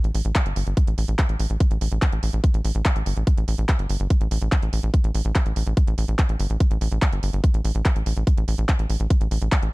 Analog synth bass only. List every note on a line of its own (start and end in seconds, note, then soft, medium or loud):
0.04 0.11 A1 medium
0.15 0.22 A1 loud
0.25 0.32 A1 loud
0.46 0.53 G1 medium
0.56 0.63 G1 loud
0.67 0.74 G1 medium
0.87 0.95 A1 medium
0.98 1.05 A1 loud
1.08 1.16 A1 loud
1.29 1.36 A1 medium
1.40 1.47 A1 loud
1.50 1.57 A1 medium
1.71 1.78 A1 medium
1.81 1.88 A1 loud
1.92 1.99 A1 loud
2.13 2.20 A1 medium
2.23 2.30 A1 loud
2.33 2.41 A1 loud
2.54 2.61 A1 medium
2.65 2.72 A1 loud
2.75 2.82 A1 loud
2.96 3.03 A1 medium
3.06 3.14 G1 loud
3.17 3.24 A1 medium
3.38 3.45 A1 medium
3.48 3.55 A1 loud
3.58 3.66 A1 loud
3.79 3.86 G1 medium
3.90 3.97 G1 loud
4.00 4.07 G1 loud
4.21 4.28 A1 medium
4.31 4.38 A1 loud
4.42 4.49 A1 medium
4.62 4.70 A1 medium
4.73 4.80 A1 loud
4.83 4.91 A1 medium
5.04 5.11 A1 medium
5.15 5.22 A1 loud
5.25 5.32 A1 medium
5.46 5.53 A1 medium
5.56 5.63 A1 loud
5.67 5.74 A1 loud
5.87 5.95 A1 medium
5.98 6.05 A1 loud
6.08 6.16 A1 medium
6.29 6.36 A1 medium
6.40 6.47 G1 loud
6.50 6.57 A1 medium
6.71 6.78 A1 medium
6.81 6.88 A1 loud
6.92 6.99 A1 medium
7.12 7.20 G1 medium
7.23 7.30 G1 loud
7.33 7.41 G1 loud
7.54 7.61 A1 medium
7.65 7.72 A1 loud
7.75 7.82 A1 medium
7.96 8.03 A1 medium
8.06 8.13 A1 loud
8.17 8.24 A1 medium
8.38 8.45 A1 medium
8.48 8.55 A1 loud
8.58 8.66 A1 loud
8.79 8.86 A1 medium
8.90 8.97 A1 loud
9.00 9.07 A1 medium
9.21 9.28 A1 medium
9.31 9.38 A1 loud
9.42 9.49 A1 medium
9.62 9.70 A1 medium